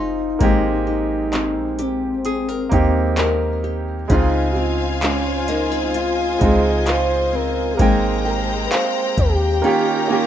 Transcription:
Already playing: 808-style bass F1, nylon-string guitar F3 C4 D#4 G#4, grand piano G#3 C4 D#4 F4, soft synth lead D#4, synth bell A#5 C6
0.39 808-style bass G#1, nylon-string guitar G#3, grand piano A#3 C4 D#4, kick, closed hi-hat
0.43 grand piano G4
0.87 soft synth lead D#4, nylon-string guitar G4
1.33 nylon-string guitar C4, clap, closed hi-hat
1.56 808-style bass A#1
1.79 soft synth lead C4, nylon-string guitar G4, closed hi-hat
2.14 808-style bass G#1
2.25 nylon-string guitar G#4, synth bell D#6, closed hi-hat
2.48 nylon-string guitar A#4
2.69 808-style bass D#2, grand piano A#3 C4 D#4, nylon-string guitar C4, synth bell A#5, kick, closed hi-hat
2.74 grand piano G4
3.17 nylon-string guitar A#4, clap, closed hi-hat
3.64 nylon-string guitar G4
4.08 808-style bass C#2, nylon-string guitar C#3, grand piano G#3 C4 D#4, soft synth lead D#4, string section F4 C5 F5 G#5, synth bell F5, kick, closed hi-hat
4.12 grand piano F4
4.51 soft synth lead G4
4.56 nylon-string guitar C4, soft synth lead F4
5.02 nylon-string guitar G#3, soft synth lead C#4, clap, closed hi-hat
5.48 nylon-string guitar A#3, soft synth lead D#4, synth bell D#5, closed hi-hat
5.72 nylon-string guitar C4
5.94 nylon-string guitar F4, soft synth lead F4, string section D#5, closed hi-hat
6.39 808-style bass C#2, grand piano G#3 C4 D#4, nylon-string guitar G#3, soft synth lead G#4, kick, closed hi-hat
6.43 grand piano F4
6.86 nylon-string guitar F4, soft synth lead C5, clap, closed hi-hat
7.33 nylon-string guitar C4, soft synth lead A#4
7.74 grand piano A#3, soft synth lead G4
7.79 808-style bass G#1, nylon-string guitar G#3, string section G#3 C5 G5 A#5, grand piano C4 D#4 G5, soft synth lead G#4, kick, closed hi-hat
8.25 nylon-string guitar G4, soft synth lead A#4, synth bell G5
8.66 soft synth lead B4
8.71 nylon-string guitar C4, soft synth lead C5, synth bell F5, clap, closed hi-hat
9.18 808-style bass D#2, nylon-string guitar G4, soft synth lead G4, kick, closed hi-hat
9.62 nylon-string guitar D#3, grand piano A#3 C#4 F4, string section D#4 C#5 A#5
9.66 grand piano G4
10.08 grand piano A#3 C#4 F4, nylon-string guitar A#3
10.12 grand piano G4

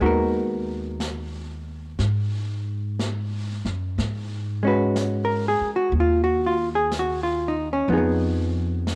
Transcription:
0.01 upright bass D#2, hollow-body jazz guitar G#3 B3 D#4 F#4 A#4, brush sweep
0.06 hollow-body jazz guitar A#4
1.00 brush sweep, snare, hi-hat pedal
1.99 upright bass G#2, brush sweep, snare
2.99 brush sweep, snare, hi-hat pedal
3.65 upright bass F#2, snare
3.98 upright bass G#2, brush sweep, snare
4.63 hollow-body jazz guitar G#3 C#4 F#4
4.68 hollow-body jazz guitar B4
4.96 brush sweep, snare, hi-hat pedal
5.25 hollow-body jazz guitar A#4
5.48 hollow-body jazz guitar G#4
5.61 muted upright bass stroke
5.76 hollow-body jazz guitar F#4
5.92 upright bass D#2, brush sweep
6.00 hollow-body jazz guitar F4
6.24 hollow-body jazz guitar F#4
6.46 hollow-body jazz guitar F4
6.75 hollow-body jazz guitar G#4
6.92 brush sweep, snare, hi-hat pedal
6.99 hollow-body jazz guitar F#4
7.23 hollow-body jazz guitar F4
7.48 hollow-body jazz guitar D#4
7.73 hollow-body jazz guitar C#4
7.88 upright bass F2, hollow-body jazz guitar F3 B3, brush sweep
7.92 hollow-body jazz guitar D#4 G#4
7.97 hollow-body jazz guitar B3
8.87 brush sweep, snare, hi-hat pedal

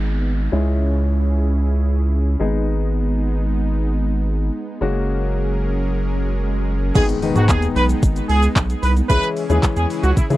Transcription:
Already playing: analog synth bass G#1, grand piano G#3 B3 D#4 G#4, supersaw synth G#3 B3 D#4, downlifter
0.52 analog synth bass C#2, supersaw synth C#3 C#4 E4 G#4, grand piano G#3 C#4 E4 G#4
2.40 analog synth bass G#1, grand piano G#3 B3 D#4 G#4, supersaw synth G#3 B3 D#4
4.81 analog synth bass F#1, supersaw synth F#3 C#4 G#4 A#4, grand piano G#3 A#3 C#4 F#4, swell
6.95 analog synth bass G#1, grand piano D#3 G#3 B3 D#4 G#4, supersaw synth G#3 B3 D#4, horn section G#4, kick, closed hi-hat, crash, impact, shaker
7.09 closed hi-hat, shaker
7.22 grand piano D#3 G#3 B3 D#4 B4, open hi-hat, shaker
7.35 analog synth bass G#2, grand piano D#3 G#3 B3 D#4 G#4, horn section F#4, closed hi-hat, shaker
7.49 analog synth bass D#2, horn section G#4, kick, clap, closed hi-hat, shaker
7.62 closed hi-hat, shaker
7.76 analog synth bass B1, horn section B4, open hi-hat, shaker
7.89 closed hi-hat, shaker
8.03 analog synth bass G#1, kick, closed hi-hat, shaker
8.16 closed hi-hat, shaker
8.29 analog synth bass C#2, horn section G#4, open hi-hat, shaker
8.43 closed hi-hat, shaker
8.56 analog synth bass B1, kick, clap, closed hi-hat, shaker
8.70 closed hi-hat, shaker
8.83 analog synth bass C2, horn section B4, open hi-hat, shaker
8.97 closed hi-hat, shaker
9.09 analog synth bass C#2, supersaw synth C#3 C#4 E4 G#4, grand piano E3 G#3 C#4 E4 G#4, horn section B4, kick, closed hi-hat, shaker
9.23 closed hi-hat, shaker
9.37 open hi-hat, shaker
9.50 analog synth bass D#2, grand piano E3 G#3 C#4 E4 G#4, horn section G#4, closed hi-hat, shaker
9.63 kick, clap, closed hi-hat, shaker
9.77 analog synth bass E2, horn section G#4, closed hi-hat, shaker
9.90 open hi-hat, shaker
10.03 analog synth bass C#2, horn section F#4, closed hi-hat, shaker
10.17 analog synth bass C#3, horn section E4, kick, closed hi-hat, shaker
10.30 analog synth bass C#3, grand piano E3 G#3 C#4 E4 G#4, closed hi-hat, shaker

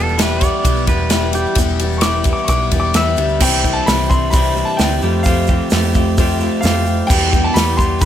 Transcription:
Already playing: picked electric bass E1, clean electric guitar E2 G3, steel-string acoustic guitar B3 E4 G4
0.00 pedal steel guitar A4
0.08 shaker
0.18 steel-string acoustic guitar E3 G3 B3 E4 G4, snare, ride, shaker
0.23 pedal steel guitar B4
0.41 steel-string acoustic guitar B3 E4 G4, pedal steel guitar D5, kick, ride, shaker
0.63 picked electric bass B1, clean electric guitar E3, steel-string acoustic guitar G3 B3 E4 G4, kick, ride, shaker
0.77 shaker
0.87 picked electric bass E1, clean electric guitar G3, steel-string acoustic guitar B3 E4 G4, pedal steel guitar B4, kick, ride, shaker
1.10 steel-string acoustic guitar E3 G3 B3 E4 G4, snare, ride, shaker
1.33 clean electric guitar G3, steel-string acoustic guitar B3 E4 G4, pedal steel guitar G4, ride, shaker
1.46 shaker
1.55 picked electric bass E1, clean electric guitar E2, steel-string acoustic guitar E3 G3 B3 E4 G4, kick, ride, shaker
1.79 clean electric guitar G3, steel-string acoustic guitar B3 E4 G4, ride, shaker
1.92 shaker
1.98 grand piano C#6 D6, snare, ride
2.03 steel-string acoustic guitar E3 G3 B3 E4 G4, shaker
2.24 steel-string acoustic guitar B3 E4 G4, kick, ride, shaker
2.33 grand piano D6
2.38 shaker
2.45 grand piano C#6, ride
2.49 picked electric bass B1, clean electric guitar E3, steel-string acoustic guitar G3 B3 E4 G4, grand piano D6, kick, shaker
2.71 picked electric bass E1, clean electric guitar G3, steel-string acoustic guitar B3 E4 G4, kick, ride, shaker
2.80 grand piano D6
2.94 picked electric bass E2, steel-string acoustic guitar E3 G3 B3 E4 G4, grand piano E5 E6, snare, ride, shaker
3.16 picked electric bass D2, clean electric guitar G3, steel-string acoustic guitar E4 G4, ride, shaker
3.20 steel-string acoustic guitar B3
3.28 shaker
3.40 picked electric bass C2, steel-string acoustic guitar C3 G3 C4 E4 G4, clean electric guitar E3, grand piano G5, kick, crash, shaker
3.64 clean electric guitar G3, steel-string acoustic guitar C4 E4 G4, kick, shaker
3.73 grand piano A5
3.86 picked electric bass C2, clean electric guitar E3, steel-string acoustic guitar G3 C4 E4 G4, grand piano B5, snare, open hi-hat, shaker
4.07 steel-string acoustic guitar C4 E4 G4, grand piano C6, kick, shaker
4.13 clean electric guitar G3
4.30 steel-string acoustic guitar C3 G3 C4 E4 G4, clean electric guitar E3, grand piano B5, kick, open hi-hat, shaker
4.55 clean electric guitar G3, steel-string acoustic guitar C4 E4 G4, shaker
4.65 grand piano A5
4.77 picked electric bass D2, clean electric guitar E3, steel-string acoustic guitar G3 C4, grand piano G5, snare, open hi-hat, shaker
4.82 steel-string acoustic guitar E4 G4
5.01 picked electric bass F2, clean electric guitar F3 A3, steel-string acoustic guitar C4 F4 G4, shaker
5.23 steel-string acoustic guitar F3, grand piano F5, kick, open hi-hat, shaker
5.27 steel-string acoustic guitar A3 C4 F4 G4
5.47 clean electric guitar A3, steel-string acoustic guitar F4 G4, kick, shaker
5.51 steel-string acoustic guitar C4
5.70 picked electric bass F2, clean electric guitar F3, steel-string acoustic guitar A3 C4 F4 G4, snare, open hi-hat, shaker
5.94 clean electric guitar A3, steel-string acoustic guitar C4 F4 G4, kick, shaker
6.17 steel-string acoustic guitar F3 A3 C4 F4 G4, kick, open hi-hat, shaker
6.40 clean electric guitar A3, steel-string acoustic guitar C4 F4 G4, shaker
6.61 picked electric bass F2, clean electric guitar F3, steel-string acoustic guitar A3 C4 F4, grand piano F5, shaker
6.65 steel-string acoustic guitar G4, snare, open hi-hat
6.85 steel-string acoustic guitar C4 F4 G4, shaker
7.07 clean electric guitar E2 B2, picked electric bass E2, steel-string acoustic guitar E3 G3 B3 E4 G4, grand piano G5, kick, shaker
7.11 crash
7.32 clean electric guitar E3 G3, steel-string acoustic guitar B3 E4 G4, kick, shaker
7.44 grand piano A5
7.53 picked electric bass E2, clean electric guitar E3, steel-string acoustic guitar G3 B3 E4 G4, grand piano B5, snare, open hi-hat, shaker
7.77 clean electric guitar E3 G3, steel-string acoustic guitar B3 E4 G4, grand piano C6, kick, shaker
7.99 clean electric guitar E2 B2, steel-string acoustic guitar E3 G3 B3 E4 G4, grand piano B5, kick, open hi-hat, shaker

